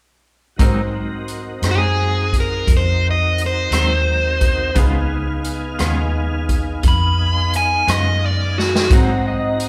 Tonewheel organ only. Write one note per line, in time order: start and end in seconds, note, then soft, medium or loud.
0.56 4.71 C4 soft
0.56 4.71 D#4 soft
0.56 4.70 F#4 soft
0.56 4.71 A#4 soft
4.77 8.88 B3 medium
4.77 8.88 D#4 soft
4.77 8.88 G#4 soft
4.77 8.88 F5 medium
8.91 9.69 C4 medium
8.91 9.69 D#4 medium
8.91 9.69 F#4 medium
8.91 9.69 A#5 soft